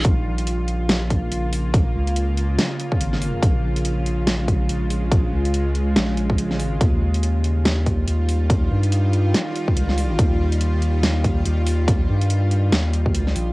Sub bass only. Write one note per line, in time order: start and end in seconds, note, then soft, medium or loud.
0.05 1.30 A#1 medium
1.32 1.93 A#1 medium
1.95 2.57 C#2 medium
3.01 3.41 G#1 medium
3.43 4.68 A#1 medium
4.69 5.31 A#1 loud
5.33 5.95 C#2 medium
5.96 6.55 A#1 loud
6.55 6.79 A1 loud
6.81 8.06 D#2 loud
8.08 8.70 D#2 loud
8.71 9.33 G2 medium
9.77 10.17 C#2 loud
10.19 11.44 D#2 loud
11.46 12.08 D#2 loud
12.09 12.71 G2 medium
12.73 13.17 D#2 loud
13.17 13.34 D2 loud
13.36 13.53 A#1 loud